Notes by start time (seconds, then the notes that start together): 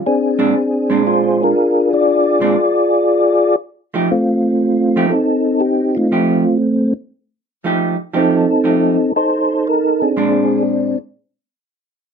0.06 C4 D4 G#4
0.39 A#2 G#3 C4 D4
0.90 A#2 G#3 C4 D4
1.07 F4 G#4 C5
1.43 D4 F4 A#4
1.93 F4 G#4 D5
2.40 A#2 G#3 C4 D4
3.94 F3 A3 D#4 G4
4.11 A3 C4 F4
4.96 F3 A3 D#4 G4
5.10 C4 D#4 A4
5.60 G4
5.95 A3 C4 F4
6.12 F3 A3 D#4 G4
7.64 F3 A3 D#4 G4
8.13 F3 A3 C4 D#4 G4
8.18 A4
8.64 F3 A3 D#4 G4
9.16 D#4 A4 C5
9.67 A#4
10.02 C4 D4 G#4
10.16 A#2 G#3 C4 D4